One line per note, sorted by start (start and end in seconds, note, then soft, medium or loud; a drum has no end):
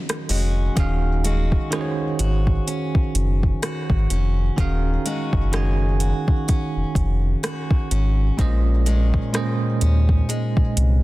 0.00 0.75 D#3 medium
0.00 0.29 G#3 medium
0.00 0.29 C#4 medium
0.00 0.30 F#4 medium
0.09 cross-stick loud
0.09 closed hi-hat medium
0.29 0.69 F1 medium
0.29 1.24 G#3 medium
0.29 1.24 C#4 medium
0.29 1.25 F#4 medium
0.29 open hi-hat medium
0.76 1.57 D#1 loud
0.76 1.55 D#3 medium
0.76 4.57 D#3 medium
0.76 1.56 C#4 medium
0.76 1.56 F#4 medium
0.76 1.57 G#4 medium
0.76 kick loud
0.76 closed hi-hat medium
0.80 1.57 F5 medium
1.24 1.71 G#3 medium
1.24 2.67 C#4 medium
1.24 2.18 F#4 medium
1.24 closed hi-hat medium
1.52 kick medium
1.70 3.24 D#3 medium
1.70 5.05 G#3 medium
1.70 3.25 C#4 medium
1.70 3.25 F#4 medium
1.70 3.25 G#4 medium
1.70 cross-stick loud
1.70 closed hi-hat medium
1.75 1.81 C5 medium
1.81 3.29 C#5 medium
2.19 2.59 G#1 medium
2.19 3.61 F#4 medium
2.19 closed hi-hat medium
2.47 kick medium
2.67 4.10 C#4 medium
2.67 closed hi-hat medium
2.95 kick medium
3.15 3.55 F#1 medium
3.15 closed hi-hat medium
3.43 kick medium
3.62 5.05 F#4 medium
3.62 cross-stick loud
3.62 closed hi-hat medium
3.90 4.07 G#1 loud
3.90 kick medium
4.10 4.50 F1 medium
4.10 5.06 C#4 medium
4.10 closed hi-hat medium
4.56 4.98 D#1 loud
4.56 5.36 D#3 medium
4.56 8.39 D#3 medium
4.56 5.36 C#4 medium
4.56 5.37 F#4 medium
4.56 5.37 G#4 medium
4.56 kick loud
4.56 closed hi-hat medium
4.60 5.38 F5 medium
5.05 5.53 G#3 medium
5.05 6.48 C#4 medium
5.05 5.99 F#4 medium
5.05 closed hi-hat medium
5.33 6.13 F#1 medium
5.33 kick medium
5.52 7.05 D#3 medium
5.52 8.86 G#3 medium
5.52 7.06 C#4 medium
5.52 7.06 F#4 medium
5.52 7.07 G#4 medium
5.52 cross-stick loud
5.52 closed hi-hat medium
5.56 7.07 G#5 medium
6.00 7.42 F#4 medium
6.00 closed hi-hat medium
6.28 kick loud
6.48 7.91 C#4 medium
6.48 kick medium
6.48 closed hi-hat medium
6.76 6.84 F1 soft
6.95 7.35 F1 medium
6.95 kick medium
6.95 closed hi-hat medium
7.43 8.49 F#4 medium
7.43 cross-stick loud
7.43 closed hi-hat medium
7.71 kick loud
7.91 8.31 G#1 medium
7.91 8.87 C#4 medium
7.91 closed hi-hat medium
8.37 9.19 A#1 loud
8.37 9.17 A#2 medium
8.37 11.03 A#2 medium
8.37 9.17 G#3 medium
8.37 9.18 C#4 medium
8.37 9.18 C5 medium
8.37 kick loud
8.37 closed hi-hat medium
8.41 9.19 D#5 medium
8.86 9.33 D#3 medium
8.86 10.28 G#3 medium
8.86 9.81 C#4 medium
8.86 closed hi-hat medium
9.14 kick medium
9.33 10.86 A#2 medium
9.33 11.03 D#3 medium
9.33 10.86 G#3 medium
9.33 10.87 C#4 medium
9.33 10.88 C5 medium
9.33 10.88 D#5 medium
9.33 cross-stick loud
9.33 closed hi-hat medium
9.81 10.22 D#2 medium
9.81 11.03 C#4 medium
9.81 closed hi-hat medium
10.09 kick medium
10.29 11.03 G#3 medium
10.29 closed hi-hat medium
10.57 kick medium
10.77 11.03 C2 loud
10.77 closed hi-hat medium